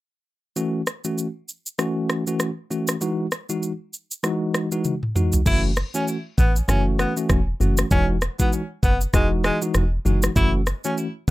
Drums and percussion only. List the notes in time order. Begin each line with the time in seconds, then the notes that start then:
0.56 shaker
0.87 cross-stick, shaker
1.04 shaker
1.18 shaker
1.49 shaker
1.66 shaker
1.79 cross-stick, shaker
2.10 cross-stick, shaker
2.27 shaker
2.40 cross-stick, shaker
2.71 shaker
2.87 cross-stick, shaker
3.01 shaker
3.31 cross-stick, shaker
3.49 shaker
3.63 shaker
3.93 shaker
4.11 shaker
4.24 cross-stick, shaker
4.54 cross-stick, shaker
4.72 shaker
4.84 high tom, shaker
5.03 mid tom
5.16 mid tom, shaker
5.32 floor tom, shaker
5.46 kick, crash, shaker
5.76 cross-stick, shaker
5.94 shaker
6.08 shaker
6.38 kick, shaker
6.56 shaker
6.69 cross-stick, shaker
6.99 cross-stick, shaker
7.17 shaker
7.29 kick, cross-stick, shaker
7.61 shaker
7.77 cross-stick, shaker
7.91 kick, shaker
8.21 cross-stick, shaker
8.39 kick, shaker
8.53 shaker
8.83 kick, shaker
9.01 shaker
9.13 kick, cross-stick, shaker
9.44 cross-stick, shaker
9.62 shaker
9.74 cross-stick, shaker
10.06 shaker
10.22 cross-stick, shaker
10.36 kick, shaker
10.66 cross-stick, shaker
10.84 shaker
10.98 shaker